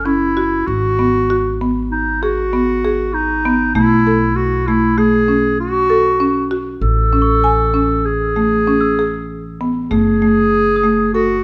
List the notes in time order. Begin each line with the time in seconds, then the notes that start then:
Already playing: F#1
0.05 C#4 E4
0.37 F#4
0.66 G#1 F#4
0.99 B3
1.30 F#4
1.61 B3
1.91 D#4
2.22 F#4 G#4
2.53 B3
2.85 G#4
3.13 D#4
3.45 B3
3.74 B1 A3 E4
4.07 A4
4.36 F#4
4.67 A3 E4
4.98 A3 G#4
5.28 C#4
5.60 F#4
5.90 A4
6.20 C#4
6.51 F#4
6.81 A1 A4
7.13 C#4
7.22 C#6
7.44 G#5
7.74 C#4
8.05 G#4
8.36 A3
8.67 C#4
8.81 E6
8.99 G#4
9.61 B3
9.91 F#1 A3 G#4
10.22 A3
10.76 D#6
10.84 A3
11.14 F#4 A4